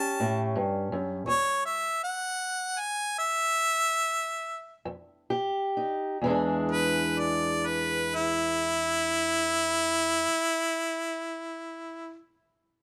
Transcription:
0.00 1.25 C#4 medium
0.00 1.25 G4 medium
0.00 0.52 A5 loud
0.20 0.56 A2 medium
0.55 0.92 G2 medium
0.92 1.27 F#2 medium
1.27 1.87 E2 medium
1.27 1.65 C#5 loud
1.66 2.02 E5 medium
2.04 2.82 F#5 medium
2.80 3.18 G#5 medium
3.19 4.82 E5 loud
4.85 5.66 F2 medium
5.30 6.17 G4 medium
5.77 6.17 D#4 medium
6.21 10.27 E2 medium
6.21 10.29 E3 medium
6.26 10.31 G#3 medium
6.26 10.33 D4 medium
6.30 10.35 G#4 medium
6.72 7.21 B4 loud
7.19 7.68 D5 medium
7.67 8.17 B4 loud
8.15 12.17 E4 loud

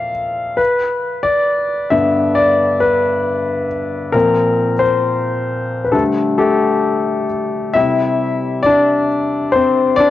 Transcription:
0.00 0.55 A#2 soft
0.00 0.55 F3 soft
0.00 0.56 C4 soft
0.00 0.61 E5 medium
0.00 0.61 F5 medium
0.57 1.26 B4 medium
1.23 1.93 D5 medium
1.90 4.10 G2 soft
1.90 4.10 D3 soft
1.90 4.11 B3 soft
1.90 2.33 E5 medium
2.35 2.82 D5 medium
2.80 3.66 B4 medium
4.13 4.74 A#2 soft
4.13 4.74 F3 soft
4.13 4.74 C4 soft
4.13 4.83 A#4 medium
4.79 5.89 C5 medium
5.85 5.93 B4 medium
5.92 7.26 D3 soft
5.92 7.26 G3 soft
5.92 6.39 A3 soft
5.92 6.02 A4 medium
6.38 7.72 A3 medium
6.38 7.26 G4 medium
6.38 7.79 A4 medium
7.73 9.06 C3 soft
7.73 9.06 G3 soft
7.73 8.62 E4 medium
7.73 8.67 E5 medium
8.63 9.51 D4 medium
8.63 9.56 D5 medium
9.52 9.96 C4 medium
9.52 9.99 C5 medium
9.96 10.10 D4 medium
9.96 10.10 D5 medium

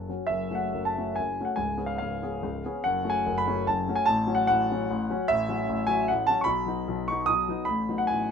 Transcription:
0.09 0.28 F#3 soft
0.09 0.28 C#4 soft
0.09 0.29 F#4 soft
0.27 0.50 F#1 medium
0.27 0.50 F#2 medium
0.27 0.57 E5 medium
0.51 0.71 A3 soft
0.51 0.71 C#4 soft
0.51 0.72 F#4 soft
0.55 0.87 F#5 medium
0.73 0.96 F#1 medium
0.73 0.95 F#2 soft
0.85 1.16 A5 medium
0.98 1.16 A3 soft
0.98 1.17 C#4 soft
0.98 1.17 F#4 soft
1.16 1.38 F#1 soft
1.16 1.38 F#2 soft
1.16 1.47 G#5 medium
1.40 1.57 A3 soft
1.40 1.57 C#4 soft
1.40 1.58 F#4 soft
1.45 1.56 F#5 medium
1.56 1.77 C#1 medium
1.56 1.77 C#2 medium
1.56 1.88 G#5 medium
1.77 1.97 B3 soft
1.77 1.97 C#4 soft
1.77 1.97 G#4 soft
1.86 1.97 F5 medium
1.98 2.22 C#1 medium
1.98 2.22 C#2 medium
1.98 2.82 F5 medium
2.22 2.41 B3 soft
2.22 2.41 C#4 soft
2.22 2.41 G#4 soft
2.42 2.62 C#1 medium
2.42 2.63 C#2 medium
2.65 2.82 B3 soft
2.65 2.82 C#4 soft
2.65 2.82 G#4 medium
2.84 3.03 F#1 medium
2.84 3.04 F#2 medium
2.84 3.10 F#5 loud
3.04 3.22 A3 soft
3.04 3.23 C#4 soft
3.04 3.23 F#4 medium
3.10 3.39 G#5 loud
3.26 3.46 F#1 medium
3.26 3.46 F#2 medium
3.38 3.66 B5 loud
3.47 3.66 A3 soft
3.47 3.65 C#4 medium
3.47 3.66 F#4 medium
3.67 3.87 F#1 medium
3.67 3.87 F#2 medium
3.67 3.96 A5 medium
3.88 4.05 A3 medium
3.88 4.05 C#4 medium
3.88 4.06 F#4 medium
3.96 4.06 G#5 loud
4.06 4.26 A1 medium
4.06 4.26 A2 medium
4.06 4.36 A5 loud
4.27 4.45 F#3 medium
4.27 4.46 C#4 medium
4.27 4.46 F#4 medium
4.35 4.46 F#5 loud
4.47 4.69 A1 medium
4.47 4.68 A2 medium
4.47 5.29 F#5 loud
4.71 4.88 F#3 medium
4.71 4.89 C#4 medium
4.71 4.89 F#4 medium
4.90 5.09 A1 medium
4.90 5.09 A2 medium
5.10 5.27 F#3 medium
5.10 5.28 C#4 medium
5.10 5.28 F#4 medium
5.28 5.48 A1 medium
5.28 5.48 A2 medium
5.28 5.90 E5 loud
5.49 5.67 F#3 medium
5.49 5.67 C#4 medium
5.49 5.68 F#4 medium
5.69 5.90 A1 medium
5.69 5.89 A2 medium
5.87 6.07 F#3 medium
5.87 6.08 C#4 medium
5.87 6.08 F#4 medium
5.87 6.08 G#5 loud
6.08 6.29 A1 medium
6.08 6.29 A2 medium
6.08 6.28 F#5 medium
6.27 6.46 F#3 medium
6.27 6.46 C#4 medium
6.27 6.46 F#4 medium
6.27 6.40 A5 loud
6.41 7.08 B5 loud
6.41 6.48 C#6 medium
6.46 6.66 B1 medium
6.46 6.66 B2 medium
6.66 6.85 F#3 soft
6.66 6.86 B3 medium
6.66 6.86 D#4 medium
6.88 7.09 B1 medium
6.88 7.09 B2 medium
7.08 7.29 F#3 medium
7.08 7.29 B3 medium
7.08 7.29 D#4 medium
7.08 7.29 C#6 loud
7.26 7.48 B1 medium
7.26 7.49 B2 medium
7.26 7.67 D#6 loud
7.48 7.66 F#3 soft
7.48 7.67 B3 medium
7.48 7.67 D#4 medium
7.65 7.88 A1 medium
7.65 7.88 A2 medium
7.65 7.97 B5 loud
7.89 8.08 F#3 soft
7.89 8.08 B3 soft
7.89 8.09 D#4 soft
7.98 8.10 F#5 medium
8.07 8.31 A1 medium
8.07 8.31 A2 medium
8.07 8.31 G#5 loud

